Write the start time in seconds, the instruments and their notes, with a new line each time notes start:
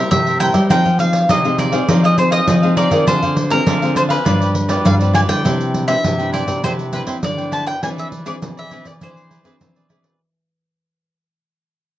Already playing: nylon-string guitar G3 A#3 E4, cavaquinho A#4 C5 E5
0.11 nylon-string guitar G2 C3, mandolin E5, pandeiro
0.26 cavaquinho A#4 C5 E5, pandeiro
0.40 nylon-string guitar G3 A#3 E4, cavaquinho E4 A#4 C5 E5, mandolin G5, pandeiro
0.54 nylon-string guitar G3, cavaquinho A#4 C5 E5, pandeiro
0.69 nylon-string guitar F3 C4 D#4 G#4, cavaquinho D#4 G#4 C5 F5, mandolin G5, pandeiro
0.85 nylon-string guitar F3, cavaquinho G#4 C5 F5, pandeiro
0.99 nylon-string guitar C4 D#4 G#4, mandolin F5, muted cavaquinho stroke, pandeiro
1.13 pandeiro
1.29 nylon-string guitar C3, cavaquinho D#4 G#4 C5 F5, mandolin D#5, pandeiro
1.44 nylon-string guitar C4 D#4 G#4, cavaquinho G#4 C5 F5, pandeiro
1.58 cavaquinho D#4 G#4 C5 F5, mandolin D5, pandeiro
1.72 nylon-string guitar C4 D#4 G#4, cavaquinho G#4 C5 F5, pandeiro
1.88 nylon-string guitar F3 C4 D#4 G#4, cavaquinho D#4 G#4 C5 F5, pandeiro
2.03 cavaquinho G#4 C5 F5, mandolin D#5, pandeiro
2.17 nylon-string guitar C4 D#4 G#4, mandolin C5, muted cavaquinho stroke, pandeiro
2.31 cavaquinho G#4 C5 F5, mandolin D#5, pandeiro
2.48 nylon-string guitar C3 F3, pandeiro
2.62 nylon-string guitar C4 D#4 G#4, cavaquinho G#4 C5 F5, pandeiro
2.77 cavaquinho D#4 G#4 C5 F5, mandolin D5, pandeiro
2.91 nylon-string guitar D#3 C4 F4 G#4, cavaquinho G#4 C5 F5, pandeiro
3.07 nylon-string guitar D3, cavaquinho D4 G#4 C5 F5, mandolin C5, pandeiro
3.22 nylon-string guitar D3, cavaquinho G#4 C5 F5, pandeiro
3.36 muted cavaquinho stroke, pandeiro
3.50 nylon-string guitar C4 F4 G#4, mandolin A#4, pandeiro
3.66 nylon-string guitar D3, cavaquinho D4 G#4 C5 F5, pandeiro
3.82 nylon-string guitar C4 F4 G#4, cavaquinho G#4 C5 F5, pandeiro
3.95 cavaquinho D4 G#4 C5 F5, mandolin C5, pandeiro
4.09 cavaquinho G#4 C5 F5, mandolin B4, pandeiro
4.25 nylon-string guitar G2 F3 B3 D4, cavaquinho F4 G4 B4 D5, pandeiro
4.40 cavaquinho G4 B4 D5, pandeiro
4.54 muted cavaquinho stroke, pandeiro
4.69 nylon-string guitar F3 B3 D4, cavaquinho G4 B4 D5, pandeiro
4.85 nylon-string guitar G2 D3, mandolin F5, pandeiro
4.99 nylon-string guitar F3 B3 D4, cavaquinho G4 B4 D5, pandeiro
5.13 cavaquinho F4 G4 B4 D5, mandolin G#5, pandeiro
5.28 nylon-string guitar D3 E3 D4, cavaquinho G4 B4 D5, mandolin G5, pandeiro
5.44 nylon-string guitar C3, cavaquinho E4 B4 C5 G5, pandeiro
5.60 pandeiro
5.74 pandeiro
5.87 nylon-string guitar E3 B3 D4, cavaquinho E4 B4 C5 G5, mandolin E5, pandeiro
6.04 nylon-string guitar G2 C3, pandeiro
6.19 nylon-string guitar E3 B3 D4, cavaquinho B4 C5 G5, pandeiro
6.33 cavaquinho E4 B4 C5 G5, mandolin D5, pandeiro
6.47 nylon-string guitar C3 E3 B3 D4, cavaquinho B4 C5 G5, pandeiro
6.63 nylon-string guitar C3 E3 B3 D4, cavaquinho E4 B4 C5 G5, mandolin C5, pandeiro
6.79 pandeiro
6.92 nylon-string guitar E3 B3 D4, cavaquinho E4 B4 C5 G5, mandolin B4, pandeiro
7.07 nylon-string guitar C4, cavaquinho E4 B4 C5 G5, pandeiro
7.23 nylon-string guitar G2 D3, mandolin D5, pandeiro
7.37 nylon-string guitar E3 B3 D4, cavaquinho B4 C5 G5, pandeiro
7.51 cavaquinho E4 B4 C5 G5, mandolin A5, pandeiro
7.66 cavaquinho B4 C5 G5, mandolin G5, pandeiro
7.82 nylon-string guitar E3 C4 D4 G#4, cavaquinho E4 G#4 B4 D5, mandolin G#5, pandeiro
7.98 mandolin E5, pandeiro
8.12 pandeiro
8.25 nylon-string guitar C4 D4 G#4, cavaquinho E4 G#4 B4 D5, mandolin D5, pandeiro
8.42 nylon-string guitar B2 E3, pandeiro
8.57 cavaquinho G#4 B4 D5, mandolin E5, pandeiro
8.71 nylon-string guitar C4 D4 G#4, cavaquinho E4 G#4 B4 D5, pandeiro
8.85 nylon-string guitar E3, cavaquinho G#4 B4 D5, mandolin D5, pandeiro
9.01 nylon-string guitar E3 C4 D4 G#4, cavaquinho E4 G#4 B4 D5, mandolin C5, pandeiro
9.17 pandeiro
9.30 cavaquinho E4 G#4 B4 D5, pandeiro
9.44 nylon-string guitar E3 C4 D4 G#4, cavaquinho E4 G#4 B4 D5, pandeiro
9.60 nylon-string guitar B2 E3, pandeiro
9.76 cavaquinho G#4 B4 D5, pandeiro
9.89 nylon-string guitar C4 D4 G#4, cavaquinho E4 G#4 B4 D5, pandeiro
10.04 cavaquinho G#4 B4 D5, pandeiro